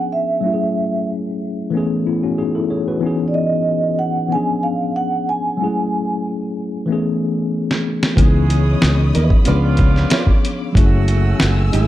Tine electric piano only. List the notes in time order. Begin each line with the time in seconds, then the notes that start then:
Already playing: F3 B3 C#4 D4 G#4
0.41 F#3 A3 C#4
0.46 E4 G4
0.54 G#4
1.70 E3 A3 B3
1.75 C#4 G#4
2.07 B3 E4
2.23 C#4 F#4
2.38 D#4 G#4
2.55 E4 A4
2.70 G#4 C#5
2.88 F#4 B4
3.00 E3 B3 C#4
3.04 D#4 G#4
4.28 E3 B3 C#4
4.33 F3 D4 G#4
5.57 F#3 G#3 C#4
5.62 A3 E4 G#4
6.86 E3 A3 B3
6.91 C#4 G#4
8.16 E3 B3 C#4
8.20 D#4 G#4
9.44 F3 B3 C#4
9.49 D4 G#4
10.72 F#3 G#3 C#4
10.77 A3 E4 G#4